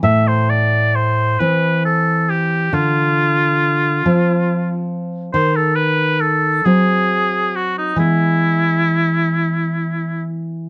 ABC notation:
X:1
M:6/8
L:1/16
Q:3/8=45
K:Am
V:1 name="Oboe"
e c d2 c2 B2 A2 G2 | F8- F2 z2 | ^B A =B2 A2 ^G4 ^F ^D | E8- E2 z2 |]
V:2 name="Nylon-string guitar" clef=bass
A,,6 [E,C]6 | D,6 [F,C]6 | ^D,6 [^F,^B,]6 | [E,^G,B,]12 |]